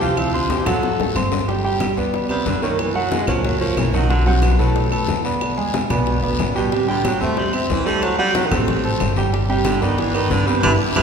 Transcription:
Already playing: upright bass D2, baritone saxophone E3, alto saxophone G4
0.01 grand piano F3 F4 F5, short guiro
0.17 baritone saxophone C3, alto saxophone E4, high bongo, high conga, long guiro, claves
0.33 baritone saxophone D3, grand piano C4 C5 C6, alto saxophone F4, high bongo, high conga
0.50 baritone saxophone E3, alto saxophone G4, high bongo, high conga, short guiro
0.66 upright bass D2, grand piano F#3 F#4 F#5, baritone saxophone F#3, alto saxophone A4, high bongo, high conga, low conga, short guiro, claves
0.83 high bongo, high conga, long guiro
0.99 upright bass A1, grand piano A3 A4 A5, low bongo, high conga
1.15 upright bass G1, grand piano C4 C5 C6, low bongo, high conga, short guiro, claves
1.32 low bongo, short guiro
1.48 grand piano G3 G4 G5, high bongo, high conga, long guiro
1.64 grand piano G3 G4 G5, high bongo, high conga
1.80 high bongo, high conga, short guiro, claves
1.97 upright bass D2, grand piano B3 B4 D5, high bongo, high conga, short guiro
2.14 high bongo, high conga, long guiro
2.29 baritone saxophone C3, grand piano B3 B4 D5, high bongo, high conga, claves
2.46 upright bass F#2, baritone saxophone D3, high bongo, low bongo, high conga, short guiro
2.62 baritone saxophone D#3, grand piano A#3 A#4 C#5, high conga, short guiro
2.79 baritone saxophone E3, high bongo, high conga, long guiro, claves
2.95 grand piano F#3 F#4 F#5, baritone saxophone F#3, high bongo, high conga
3.11 baritone saxophone G#3, high bongo, high conga, short guiro
3.27 upright bass C#2, baritone saxophone F3, grand piano A#3 A#4 C#5, high bongo, high conga, low conga, short guiro, claves
3.44 baritone saxophone F#3, high bongo, high conga, low conga, long guiro
3.60 baritone saxophone F3, grand piano A#3 A#4 C#5, high bongo, high conga
3.77 upright bass B1, baritone saxophone E3, high bongo, low bongo, high conga, short guiro, claves
3.93 baritone saxophone D#3, grand piano F#3 F#4 F#5, high conga, short guiro
4.09 baritone saxophone D3, grand piano F#3 F#4 F#5, high bongo, high conga, long guiro
4.26 baritone saxophone C3, grand piano F#3 F#4 F#5, high bongo, high conga
4.42 baritone saxophone B2, high bongo, high conga, short guiro, claves
4.58 baritone saxophone A2, upright bass B2, grand piano A3 A4 B4, high bongo, high conga, short guiro
4.75 high bongo, high conga, long guiro
4.92 grand piano A3 A4 B4, high bongo, high conga, claves
5.08 upright bass E2, high bongo, low bongo, high conga, short guiro
5.25 grand piano B3 B4 D5, high conga, short guiro
5.41 high bongo, high conga, long guiro, claves
5.57 grand piano G#3 G#4 G#5, high bongo, high conga
5.74 high bongo, high conga, short guiro
5.90 upright bass B1, grand piano B3 B4 D5, high bongo, high conga, low conga, short guiro, claves
6.06 baritone saxophone B2, high bongo, high conga, long guiro
6.23 upright bass B1, baritone saxophone D2, grand piano B3 B4 D5, high bongo, high conga
6.39 upright bass A1, baritone saxophone F#2, high bongo, low bongo, high conga, short guiro, claves
6.55 baritone saxophone B2, grand piano G3 G4 G5, short guiro
6.72 baritone saxophone C3, grand piano G3 G4 G5, high bongo, high conga, long guiro
6.88 baritone saxophone D3, grand piano G3 G4 G5, high bongo, high conga
7.05 baritone saxophone F#3, high bongo, high conga, short guiro, claves
7.21 upright bass E2, baritone saxophone A3, grand piano C4 C5 E5, high bongo, high conga, short guiro
7.37 baritone saxophone G3, high bongo, high conga, long guiro
7.53 baritone saxophone B2, grand piano C4 C5 E5, high bongo, high conga, claves
7.70 upright bass D2, baritone saxophone E3, high bongo, low bongo, high conga, short guiro
7.86 baritone saxophone G3, grand piano A3 A4 C5, high conga, short guiro
8.02 baritone saxophone F#3, high bongo, high conga, long guiro, claves
8.18 grand piano F#3 F#4 F#5, baritone saxophone G3, high bongo, high conga
8.35 baritone saxophone F#3, high bongo, high conga, short guiro
8.46 baritone saxophone D#3
8.51 upright bass A1, grand piano A3 A4 C5, high bongo, high conga, low conga, short guiro, claves
8.57 baritone saxophone C3
8.68 high bongo, high conga, low conga, long guiro
8.84 grand piano A3 A4 C5, high bongo, high conga
9.00 upright bass G1, high bongo, low bongo, high conga, short guiro, claves
9.16 grand piano G3 G4 G5, high conga, short guiro
9.32 grand piano G3 G4 G5, high bongo, high conga, long guiro
9.49 baritone saxophone C3, grand piano G3 G4 G5, high bongo, high conga
9.65 baritone saxophone D3, high bongo, high conga, short guiro, claves
9.81 upright bass G2, baritone saxophone D#3, grand piano B3 B4 D5, high bongo, high conga, short guiro
9.98 baritone saxophone E3, high bongo, high conga, long guiro
10.14 baritone saxophone D#3, grand piano B3 B4 D5, high bongo, high conga, claves
10.30 upright bass G2, baritone saxophone D3, high bongo, low bongo, high conga, short guiro
10.47 baritone saxophone C3, grand piano B3 B4 D5, high conga, short guiro
10.63 upright bass G1, baritone saxophone D3, grand piano E4 G4 B4, low bongo, high conga, long guiro, claves
10.96 upright bass G1, baritone saxophone D3, grand piano E4 G4 B4, low bongo, high conga, claves

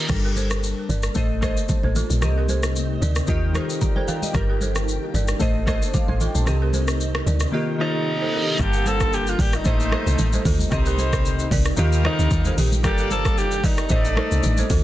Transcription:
Already playing: synth keys D#3 A#3 F4 G4 A#4
0.09 log drum bass G1, synth keys G3 D4 A4 A#4, kick, cross-stick, crash, low conga, shaker
0.25 balafon G4 A#4
0.36 balafon A4 C5, high conga, shaker
0.51 cross-stick, shaker
0.63 shaker
0.89 log drum bass G1, balafon A#4 D5, high conga, low conga, shaker
1.03 cross-stick, shaker
1.15 log drum bass A1, synth keys A3 A4 C5 D#5, ambient pad D#4, balafon C5 D#5, kick, shaker
1.41 synth keys A3 A4 C5 D#5, balafon A4 C5, kick, cross-stick, high conga, shaker
1.57 shaker
1.69 kick, high conga, low conga, shaker
1.83 log drum bass A1, balafon A4 C5, high conga
1.96 balafon F4 A4, low conga, shaker
2.10 log drum bass A#1, high conga, shaker
2.21 log drum bass C2, synth keys C3 C4 G4 D#5, ambient pad G4, cross-stick, low conga, shaker
2.38 balafon G4 A#4
2.48 balafon A4 C5, high conga, shaker
2.63 cross-stick, shaker
2.76 shaker
3.02 log drum bass D2, balafon A#4 D5, high conga, low conga, shaker
3.16 cross-stick, shaker
3.27 log drum bass D#2, synth keys D#3 D#4 F4 G4, balafon A#4 D#5, kick, shaker
3.54 synth keys D#3 D#4 F4 A#4, balafon A4 C5, cross-stick, high conga, shaker
3.70 shaker
3.81 synth keys D5 A#5, kick, high conga, low conga, shaker
3.96 balafon A4 C5, synth keys A#4 G5, high conga
4.08 balafon G4 A#4, synth keys A4 F5, low conga, shaker
4.22 synth keys G4 D#5, high conga, shaker
4.33 log drum bass G1, synth keys G3 G4 A4 A#4, kick, cross-stick, low conga, shaker
4.50 balafon G4 A#4
4.61 balafon A4 C5, high conga, shaker
4.76 cross-stick, shaker
4.88 shaker
5.14 log drum bass G1, balafon A#4 D5, high conga, low conga, shaker
5.28 cross-stick, shaker
5.39 log drum bass A1, synth keys A3 A4 C5 D#5, ambient pad C4 D#4, balafon C5 D#5, kick, shaker
5.66 synth keys A3 A4 C5 D#5, balafon A4 C5, kick, cross-stick, high conga, shaker
5.82 shaker
5.94 synth keys F5 D6, kick, high conga, low conga, shaker
6.08 log drum bass A1, balafon A4 C5, synth keys D#5 C6, high conga
6.20 balafon F4 A4, synth keys G5, low conga, shaker
6.35 log drum bass A#1, synth keys C5 A5, high conga, shaker
6.45 log drum bass C2, synth keys C3 C4 G4 D#5, ambient pad G4, cross-stick, low conga, shaker
6.62 balafon G4 A#4
6.73 balafon A4 C5, high conga, shaker
6.88 cross-stick, shaker
7.01 shaker
7.15 cross-stick
7.26 log drum bass D2, balafon A#4 D5, high conga, low conga, shaker
7.40 cross-stick, shaker
7.52 synth keys D#3 A#3 F4 G4, balafon A#4 D#5, reverse cymbal
7.78 synth keys D#3 A#3 F4 A4, alto saxophone D#4, balafon A4 C5
8.22 balafon A4 C5
8.34 balafon G4 A#4
8.58 log drum bass G1, horn section D3 A#3 A4, synth keys G3 A#3 D4 A4, alto saxophone G4, kick, cross-stick, low conga, shaker
8.73 balafon G4 A#4, shaker
8.86 balafon A4 C5, alto saxophone A4, high conga, shaker
9.00 kick, cross-stick, shaker
9.13 alto saxophone G4, shaker
9.27 alto saxophone F4, shaker
9.39 log drum bass A1, alto saxophone G4, balafon A#4 D5, kick, open hi-hat, high conga, low conga, shaker
9.53 alto saxophone D#4, cross-stick, shaker
9.64 log drum bass A1, synth keys A3 A4 C5 D#5, horn section A3 D#4 C5, ambient pad C4 D#4, balafon C5 D#5, kick, shaker
9.80 shaker
9.91 synth keys A3 A4 C5 D#5, balafon A4 C5, cross-stick, high conga
10.06 log drum bass C2, shaker
10.19 log drum bass A1, high conga, low conga, shaker
10.33 balafon A4 C5, high conga, shaker
10.45 log drum bass D2, balafon F4 A4, kick, open hi-hat, low conga, shaker
10.59 high conga, shaker
10.70 log drum bass C2, synth keys C3 C4 G4 D#5, horn section G3 D#4 C5, ambient pad G4, kick, cross-stick, low conga, shaker
10.86 balafon G4 A#4, shaker
10.98 balafon A4 C5, high conga, shaker
11.13 kick, cross-stick, shaker
11.25 shaker
11.39 shaker
11.51 log drum bass C2, balafon A#4 D5, kick, open hi-hat, high conga, low conga, shaker
11.65 cross-stick, shaker
11.77 log drum bass D#2, synth keys D#3 D#4 F4 G4, horn section G3 F4 A#4, balafon A#4 D#5, shaker
11.92 shaker
12.03 synth keys D#3 D#4 F4 A#4, alto saxophone D#4, balafon A4 C5, cross-stick, high conga
12.19 log drum bass D2, shaker
12.31 log drum bass D#2, kick, high conga, low conga, shaker
12.45 balafon A4 C5, high conga, shaker
12.57 log drum bass A#1, balafon G4 A#4, open hi-hat, low conga, shaker
12.72 high conga, shaker
12.83 log drum bass G1, synth keys G3 G4 A4 A#4, horn section A#3 A4 D5, alto saxophone G4, kick, cross-stick, low conga, shaker
12.98 balafon G4 A#4, shaker
13.10 alto saxophone A4, balafon A4 C5, high conga, shaker
13.25 kick, cross-stick, shaker
13.38 alto saxophone G4, shaker
13.52 shaker
13.64 log drum bass A1, alto saxophone D#4, balafon A#4 D5, kick, open hi-hat, high conga, low conga, shaker
13.77 cross-stick, shaker
13.89 log drum bass A1, synth keys A3 A4 C5 D#5, horn section A3 D#4 D5, ambient pad C4 D#4, balafon C5 D#5, kick, shaker
14.05 shaker
14.15 synth keys A3 D#4 A4 C5, balafon A4 C5, cross-stick, high conga
14.31 log drum bass C2, shaker
14.43 log drum bass A1, high conga, low conga, shaker
14.57 balafon A4 C5, high conga, shaker
14.70 log drum bass D2, balafon F4 A4, kick, open hi-hat, low conga, shaker

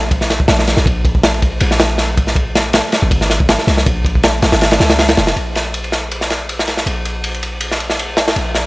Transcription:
Already playing: 808-style bass A#1
0.11 kick, ride
0.21 snare
0.30 snare, ride
0.40 kick
0.48 808-style bass A#1, snare, ride
0.59 snare
0.67 snare, ride
0.77 808-style bass A#1, snare
0.86 808-style bass A#1, kick, ride
1.05 kick, ride
1.15 kick
1.23 snare, ride
1.34 ride
1.42 kick, ride
1.60 808-style bass A#1, ride
1.71 snare
1.80 snare, ride
1.89 ride
1.98 snare, ride
2.17 kick, ride
2.27 snare
2.36 kick, ride
2.55 snare, ride
2.73 snare, ride
2.83 ride
2.92 snare, ride
3.02 808-style bass G#1
3.11 kick, ride
3.21 snare
3.30 snare, ride
3.40 kick
3.49 snare, ride
3.58 snare
3.67 808-style bass C2, snare, ride
3.77 snare
3.86 808-style bass A#1, kick, ride
4.05 kick, ride
4.15 kick
4.23 snare, ride
4.34 ride
4.42 808-style bass A#1, snare, ride
4.52 808-style bass G#1, snare, ride
4.61 snare, ride
4.71 snare, ride
4.80 808-style bass C#2, snare, ride
4.90 snare, ride
4.99 snare, ride
5.09 snare, ride
5.17 808-style bass F1, snare, ride
5.27 snare, ride
5.36 808-style bass A#1, ride
5.55 snare, ride
5.74 ride
5.84 ride
5.92 snare, ride
6.11 ride
6.21 snare
6.30 snare, ride
6.49 ride
6.59 snare
6.68 snare, ride
6.77 snare
6.86 808-style bass A#1, ride
7.05 ride
7.24 ride
7.34 ride
7.43 ride
7.61 ride
7.71 snare
7.80 ride
7.90 snare
7.99 ride
8.17 snare, ride
8.28 snare, ride
8.36 808-style bass A#1, ride
8.55 snare, ride

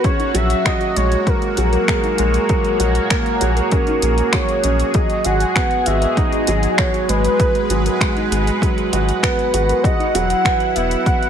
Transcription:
Already playing: analog synth pad F#4 F#5 A#5
0.04 analog synth pad A#3, felt piano C#4, synth arpeggio sound G#4, soft synth lead C#5, kick, closed hi-hat
0.19 synth arpeggio sound D#4, closed hi-hat
0.34 sub bass A#1, felt piano F#3, synth arpeggio sound G#4, soft synth lead E5, closed hi-hat
0.50 closed hi-hat
0.65 felt piano F#4, synth arpeggio sound G#4, soft synth lead D#5, finger snap, kick, closed hi-hat
0.81 closed hi-hat
0.96 sub bass A#1, felt piano G#3, soft synth lead C#5, synth arpeggio sound D#5, closed hi-hat
1.12 analog synth pad C#5, closed hi-hat
1.27 felt piano A#4, soft synth lead A#4, kick, closed hi-hat
1.35 analog synth pad G#4
1.42 closed hi-hat
1.57 sub bass A#1, felt piano F#3, synth arpeggio sound G#4, closed hi-hat
1.72 synth arpeggio sound A#4, closed hi-hat
1.88 felt piano G#3, synth arpeggio sound G#4, finger snap, kick, closed hi-hat
2.03 synth arpeggio sound D#4, closed hi-hat
2.18 sub bass A#1, felt piano G#3, synth arpeggio sound G#4, closed hi-hat
2.34 closed hi-hat
2.49 felt piano F#3, synth arpeggio sound G#4, kick, closed hi-hat
2.65 closed hi-hat
2.80 sub bass A#1, felt piano F#4, synth arpeggio sound D#5, closed hi-hat
2.95 closed hi-hat
3.10 felt piano A#3, finger snap, kick, closed hi-hat
3.26 closed hi-hat
3.41 sub bass A#1, felt piano F#4, synth arpeggio sound G#4, closed hi-hat
3.56 synth arpeggio sound A#4, closed hi-hat
3.71 felt piano C#4, synth arpeggio sound G#4, kick, closed hi-hat
3.87 synth arpeggio sound D#4, closed hi-hat
4.02 sub bass A#1, felt piano A#3, synth arpeggio sound G#4, closed hi-hat
4.18 closed hi-hat
4.33 felt piano F#3, synth arpeggio sound G#4, soft synth lead C#5, finger snap, kick, closed hi-hat
4.49 closed hi-hat
4.64 sub bass A#1, felt piano C#4, synth arpeggio sound D#5, closed hi-hat
4.80 closed hi-hat
4.94 felt piano F#3, analog synth pad G#3, synth arpeggio sound G#4, soft synth lead D#5, kick, closed hi-hat
5.10 closed hi-hat
5.25 sub bass G#1, felt piano F#4, synth arpeggio sound D#5, soft synth lead F#5, closed hi-hat
5.40 closed hi-hat
5.56 felt piano B3, finger snap, kick, closed hi-hat
5.71 closed hi-hat
5.86 sub bass G#1, felt piano F#4, synth arpeggio sound G#4, soft synth lead E5, closed hi-hat
6.01 synth arpeggio sound A#4, closed hi-hat
6.17 felt piano D#4, synth arpeggio sound G#4, soft synth lead D#5, kick, closed hi-hat
6.32 synth arpeggio sound D#4, closed hi-hat
6.47 sub bass G#1, felt piano F#3, synth arpeggio sound G#4, closed hi-hat
6.63 closed hi-hat
6.72 analog synth pad B4
6.77 felt piano F#4, synth arpeggio sound G#4, soft synth lead C#5, finger snap, kick, closed hi-hat
6.94 closed hi-hat
7.08 sub bass G#1, felt piano G#3, soft synth lead B4, synth arpeggio sound D#5, closed hi-hat
7.16 analog synth pad F#5
7.24 closed hi-hat
7.39 felt piano B4, kick, closed hi-hat
7.55 closed hi-hat
7.70 sub bass G#1, felt piano F#3, synth arpeggio sound G#4, closed hi-hat
7.86 synth arpeggio sound A#4, closed hi-hat
8.01 felt piano G#3, synth arpeggio sound G#4, finger snap, kick, closed hi-hat
8.16 synth arpeggio sound D#4, closed hi-hat
8.31 sub bass G#1, felt piano G#3, synth arpeggio sound G#4, closed hi-hat
8.47 closed hi-hat
8.62 felt piano F#3, synth arpeggio sound G#4, kick, closed hi-hat
8.78 closed hi-hat
8.92 sub bass G#1, felt piano F#4, synth arpeggio sound D#5, closed hi-hat
9.09 closed hi-hat
9.22 felt piano B3, soft synth lead B4, finger snap, kick, closed hi-hat
9.39 closed hi-hat
9.53 sub bass G#1, felt piano F#4, synth arpeggio sound G#4, closed hi-hat
9.69 synth arpeggio sound A#4, closed hi-hat
9.83 analog synth pad E4, felt piano F#4, synth arpeggio sound G#4, soft synth lead D#5, kick, closed hi-hat
9.99 synth arpeggio sound D#4, closed hi-hat
10.14 sub bass E1, felt piano F#3, synth arpeggio sound G#4, soft synth lead F#5, closed hi-hat
10.30 closed hi-hat
10.45 synth arpeggio sound G#4, felt piano B4, finger snap, kick, closed hi-hat
10.60 closed hi-hat
10.75 sub bass E1, felt piano B3, synth arpeggio sound D#5, soft synth lead E5, closed hi-hat
10.91 closed hi-hat
11.06 soft synth lead F#5, felt piano F#5, kick, closed hi-hat
11.23 closed hi-hat

